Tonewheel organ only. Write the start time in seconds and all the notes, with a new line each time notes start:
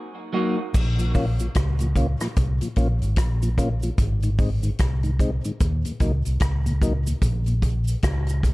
0.99 A#2 F3
1.15 A#3 C#4 F4
1.40 A#2 F3
1.81 A#2 F3
1.96 A#3 C#4 F4
2.21 A#2 F3
2.62 A#2 F3
2.77 A#3 C#4 F4
3.42 A#2 F3
3.58 A#3 C#4 F4
3.83 A#2 F3
4.24 G#2 D#3
4.39 G#3 C4 D#4
4.63 G#2 D#3
5.04 G#2 D#3
5.20 G#3 C4 D#4
5.45 G#2 D#3
5.85 D#2 A#2
6.01 F#3 A#3 D#4
6.66 D#2 A#2
6.82 F#3 A#3 D#4
7.07 D#2 A#2
7.48 A#2